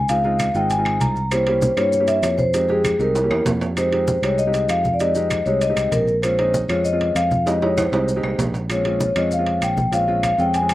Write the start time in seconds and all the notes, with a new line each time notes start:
Already playing: C#2
0.09 G#3 C4 D#4 F4 F5, high conga, high timbale, maracas
0.24 G#3 C4 D#4 F4, high conga
0.39 high conga, high timbale, claves, maracas
0.55 G#1 G#3 C4 D#4 F4 G5, high conga, maracas
0.70 G#5, high conga, high timbale, maracas
0.78 G#3 C4 D#4 F4
0.85 high conga, high timbale, claves
1.00 C2 A#5, high conga, high timbale, maracas
1.16 high conga, maracas
1.31 A#3 C#4 E4 G4 C5, high conga, high timbale, claves, maracas
1.47 A#3 C#4 E4 G4, high conga, high timbale
1.62 high conga, maracas
1.77 G2 A#3 C#4 E4 G4 C#5, high conga, high timbale, claves, maracas
1.93 high conga, maracas
2.00 A#3 C#4 E4 G4
2.07 E5, high conga, high timbale, maracas
2.22 F2 C#5, high conga, high timbale, low timbale, claves, maracas
2.38 C5, high conga, maracas
2.54 G#3 C4 D#4 G4, high conga, high timbale, maracas
2.69 G#3 C4 D#4 G4 G#4, high conga
2.84 high conga, high timbale, claves, maracas
2.99 C2 G#3 C4 D#4 G4 A#4, high conga, maracas
3.15 high conga, high timbale, maracas
3.23 A#3 C#4 E4 G4
3.30 E2, high conga, high timbale, claves
3.45 F2, high conga, low timbale, maracas
3.61 high conga, low timbale, maracas
3.77 G#3 C4 D#4 G4 C5, high conga, high timbale, claves, maracas
3.92 G#3 C4 D#4 G4, high conga, high timbale
4.08 high conga, maracas
4.22 C2 G#3 C4 D#4 G4 C#5, high conga, high timbale, claves, maracas
4.38 D#5, high conga, maracas
4.47 G#3 C4 D#4 G4
4.54 high conga, high timbale, maracas
4.68 F2 F5, high conga, high timbale, claves, maracas
4.84 high conga, maracas
4.94 D5
4.99 G#3 C4 D#4 G4 D#5, high timbale, maracas
5.15 G#3 C4 D#4 G4, high conga, maracas
5.30 high conga, high timbale, claves, maracas
5.46 C2 G#3 C4 D#4 G4 C#5, high conga, maracas
5.61 D#5, high conga, high timbale, maracas
5.69 G#3 C4 D#4 G4
5.76 C2, high conga, high timbale, claves, maracas
5.92 A#1 A#4, high conga, high timbale, maracas
6.08 high conga, maracas
6.22 G#3 C4 C#4 F4 C5, high conga, high timbale, claves, maracas
6.38 G#3 C4 C#4 D#4, high conga, high timbale
6.54 high conga, maracas
6.68 F2 G#3 C4 C#4 F4 C#5, high conga, high timbale, claves, maracas
6.84 D#5, high conga, maracas
6.92 G#3 C4 C#4 F4
7.01 high conga, high timbale
7.15 F2 F5, high conga, high timbale, claves, maracas
7.31 high conga, maracas
7.46 G#3 C4 D#4 G4 D#5, high timbale, maracas
7.62 G#3 C4 D#4 G4 C#5, high conga, high timbale
7.77 C5, high conga, high timbale, claves, maracas
7.92 C2 G#3 C4 D#4 G4, high conga, high timbale, maracas
8.08 high conga, maracas
8.16 G#3 C4 D#4 G4
8.23 C2, high conga, low timbale, claves
8.38 A#1, high conga, low timbale, maracas
8.54 high conga, low timbale, maracas
8.69 G#3 C4 C#4 F4 C#5, high conga, high timbale, claves, maracas
8.85 G#3 C4 C#4 F4, high conga, high timbale
9.01 C#5, high conga, maracas
9.16 F2 G#3 C4 C#4 F4 D#5, high conga, high timbale, claves, maracas
9.31 F5, high conga, maracas
9.38 G#3 C4 C#4 F4
9.46 high conga, high timbale
9.61 A#1 G5, high conga, high timbale, claves, maracas
9.77 high conga, maracas
9.91 G#3 C4 C#4 F4 F5, high conga, high timbale, maracas
10.08 G#3 C4 C#4 F4, high conga
10.23 F5, high conga, high timbale, claves, maracas
10.38 F2 G#3 C4 C#4 F4 G5, high conga, maracas
10.54 G#5, high conga, high timbale, maracas
10.62 G#3 C4 C#4 G#4
10.69 high conga, high timbale, claves, maracas